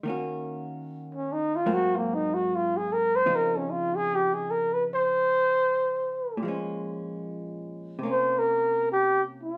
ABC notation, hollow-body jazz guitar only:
X:1
M:4/4
L:1/8
Q:"Swing" 1/4=75
K:Dblyd
V:1 name="Hollow-body jazz guitar"
[E,B,D_G]4 [A,,_G,B,C]4 | [D,F,CE]8 | [B,,F,A,D]4 [C,B,D]4 |]